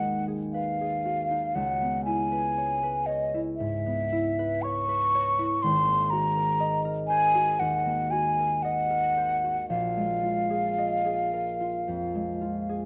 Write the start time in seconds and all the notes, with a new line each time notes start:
Already playing: G#1 D#2 F#3 G#3 F#4 G#4 B4 F#5
0.02 D#4
0.28 G#4
0.53 B4 F5
0.81 G#4
1.06 F#4
1.30 D#4
1.55 C#2 F#5
1.81 B3
2.05 E4 G#5
2.32 B4
2.58 C#5
2.83 B4
3.06 C#5 D#5
3.34 E4
3.56 G#2 E5
3.86 B3
4.12 E4
4.39 B4
4.62 C#5 C#6
4.89 B4
5.15 C#5
5.38 E4
5.62 G#1 C6
5.88 A#3
6.10 F#4 A#5
6.36 A#4
6.60 D#5
6.85 A#4
7.07 C5 G#5
7.35 F#4
7.60 D#2 F#5
7.86 A#3
8.11 F#4 G#5
8.39 A#4
8.63 D#5 F#5
8.90 A#4
9.17 C5
9.44 F#4
9.69 A#1 F5
9.97 G#3
10.23 F4
10.50 G#4
10.78 D#5
11.05 G#4
11.33 A#4
11.60 F4
11.88 F2
12.15 G#3
12.41 F4
12.69 G#4